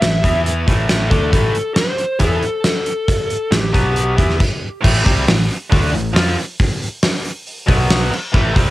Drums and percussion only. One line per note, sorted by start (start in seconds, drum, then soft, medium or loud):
0.02 snare loud
0.02 closed hi-hat medium
0.24 kick loud
0.24 closed hi-hat medium
0.46 closed hi-hat medium
0.68 kick medium
0.68 closed hi-hat medium
0.89 snare loud
0.89 closed hi-hat medium
1.11 kick medium
1.11 closed hi-hat medium
1.33 kick loud
1.33 closed hi-hat medium
1.55 closed hi-hat medium
1.76 snare loud
1.76 closed hi-hat medium
1.98 closed hi-hat medium
2.19 kick loud
2.19 closed hi-hat medium
2.43 closed hi-hat medium
2.64 snare loud
2.64 closed hi-hat medium
2.86 closed hi-hat medium
3.08 kick loud
3.08 closed hi-hat medium
3.30 closed hi-hat medium
3.52 snare loud
3.52 closed hi-hat medium
3.74 kick loud
3.74 closed hi-hat medium
3.96 closed hi-hat medium
4.18 kick loud
4.18 closed hi-hat medium
4.30 snare soft
4.40 kick loud
4.40 crash medium
4.84 kick loud
4.84 crash loud
5.06 kick loud
5.06 open hi-hat medium
5.28 snare loud
5.28 open hi-hat medium
5.51 open hi-hat medium
5.72 kick loud
5.72 open hi-hat medium
5.94 open hi-hat medium
6.16 snare loud
6.16 open hi-hat medium
6.28 snare soft
6.39 open hi-hat medium
6.60 kick loud
6.60 open hi-hat medium
6.82 open hi-hat medium
7.03 snare loud
7.03 open hi-hat medium
7.25 open hi-hat medium
7.47 open hi-hat medium
7.68 kick loud
7.68 open hi-hat medium
7.90 snare loud
7.90 open hi-hat medium
8.13 crash medium
8.34 kick loud
8.56 kick loud
8.56 open hi-hat medium